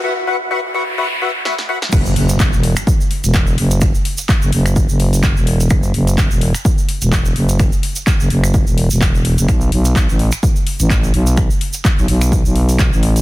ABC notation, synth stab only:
X:1
M:4/4
L:1/8
Q:"Swing 16ths" 1/4=127
K:Emix
V:1 name="Synth stab"
[FBef] [FBef] [FBef] [FBef] [FBef] [FBef] [FBef] [FBef] | z8 | z8 | z8 |
z8 | z8 | z8 |]